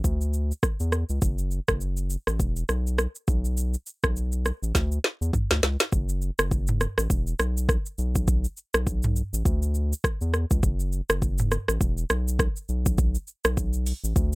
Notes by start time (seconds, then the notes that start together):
0.04 D2, kick, shaker
0.21 shaker
0.33 shaker
0.52 shaker
0.63 kick, cross-stick, shaker
0.80 E2, shaker
0.92 cross-stick, shaker
1.09 C#2, shaker
1.22 F#1, kick, shaker
1.38 shaker
1.51 shaker
1.68 F#1, kick, cross-stick, shaker
1.81 shaker
1.97 shaker
2.10 shaker
2.27 A1, cross-stick, shaker
2.40 E1, kick, shaker
2.56 shaker
2.69 B1, cross-stick, shaker
2.87 shaker
2.98 cross-stick, shaker
3.15 shaker
3.28 B1, kick, shaker
3.45 shaker
3.57 shaker
3.74 shaker
3.87 shaker
4.04 B1, kick, cross-stick, shaker
4.16 shaker
4.32 shaker
4.46 cross-stick, shaker
4.62 A1, shaker
4.75 D2, kick, snare, shaker
4.92 shaker
5.04 snare
5.21 E2, shaker
5.33 kick, mid tom, shaker
5.51 D2, snare, shaker
5.63 C#2, snare, shaker
5.80 snare, shaker
5.92 F#1, kick, shaker
6.09 shaker
6.22 shaker
6.39 F#1, cross-stick, shaker
6.51 kick, shaker
6.67 mid tom, shaker
6.81 cross-stick, shaker
6.98 A1, cross-stick, shaker
7.10 E1, kick, shaker
7.27 shaker
7.39 B1, cross-stick, shaker
7.57 shaker
7.69 kick, cross-stick, shaker
7.86 shaker
7.98 B1, shaker
8.15 kick, shaker
8.28 kick, shaker
8.44 shaker
8.57 shaker
8.74 B1, cross-stick, shaker
8.87 kick, shaker
9.03 mid tom, shaker
9.16 shaker
9.33 A1, shaker
9.45 D2, kick, shaker
9.62 shaker
9.75 shaker
9.93 shaker
10.04 kick, cross-stick, shaker
10.21 E2, shaker
10.34 cross-stick, shaker
10.51 C#2, kick, shaker
10.63 F#1, kick, shaker
10.80 shaker
10.92 shaker
11.10 F#1, cross-stick, shaker
11.22 kick, shaker
11.38 mid tom, shaker
11.51 cross-stick, shaker
11.68 A1, cross-stick, shaker
11.81 E1, kick, shaker
11.98 shaker
12.10 B1, cross-stick, shaker
12.28 shaker
12.39 kick, cross-stick, shaker
12.56 shaker
12.69 B1, shaker
12.86 kick, shaker
12.98 kick, shaker
13.15 shaker
13.28 shaker
13.45 B1, cross-stick, shaker
13.57 kick, shaker
13.73 shaker
13.86 open hi-hat, shaker
14.04 A1, shaker
14.16 D2, kick, shaker